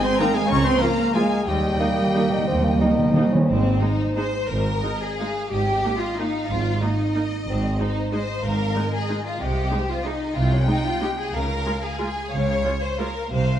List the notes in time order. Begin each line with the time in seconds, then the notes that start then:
0.02 C4 C5 G#5 C6
0.19 D#3 A#3 C4 D#4 A#4 G5 A#5
0.34 G#3 G#4 F5 G#5
0.48 C#2 C#4 C#5 A#5 C#6
0.63 C4 C5 G#5 C6
0.79 F3 A#3 F4 A#4 F5 A#5
1.13 F3 G#3 A#3 F4 G#4 F5 G#5
1.46 D#2 D#3 G3 G4 D#5 G5
1.54 D#3
1.62 D#3
1.70 D#3
1.77 D#3 A#3 D#4
1.86 D#3
1.93 D#3
2.00 D#3
2.07 D#3
2.15 D#3 A#3 D#4
2.23 D#3
2.30 D#3 D#4
2.38 D#3
2.45 D#2 D#3 C4
2.52 D#3
2.59 D#3
2.64 D#3 A#3
2.75 D#3
2.81 D#3 A#3 D#4
2.91 D#3
2.99 D#3
3.07 D#3
3.14 D#3 A#3 D#4
3.21 D#3
3.29 D#3 C#4
3.35 D#3
3.49 G#1 G#2 C4
3.80 G#3 D#4 C5
4.17 G#3 D#4 C5
4.49 G#1 G#2 A#4
4.83 G#3 D#4 D#5
4.99 G#4
5.19 G#3 D#4 F5
5.51 G#1 G#2 G4 D#5
5.84 A#3 D#4 D#5
5.98 F4
6.17 A#3 D#4 F5
6.50 G#1 G#2 F4
6.81 A#3 D#4 D#5
7.15 A#3 D#4
7.47 G#1 G#2 C4
7.79 G#3 D#4 C5
8.12 G#3 D#4 C5 D#5
8.42 G#1 G#2 A#4 F5
8.75 G#3 D#4 D#5
8.93 G#4
9.09 G#3 D#4
9.25 F4
9.40 C2 C3 G4 D#5
9.71 G#3 D#4 C5
9.89 F4
10.04 G#3 D#4 D#5
10.35 C2 C3 F4 G5
10.52 C#4
10.67 G#3 D#4
10.86 F4
11.01 G#3 D#4 G4
11.18 G#4
11.33 C#2 C#3 A#4 F5
11.65 G#3 F4
11.82 G#4
11.98 G#3 F4 G#5
12.31 C#2 C#3 C#5 F5
12.64 G#3 F4 C#5
12.83 C5
12.98 G#3 F4 A#4 F5
13.30 C2 C3 C5 F5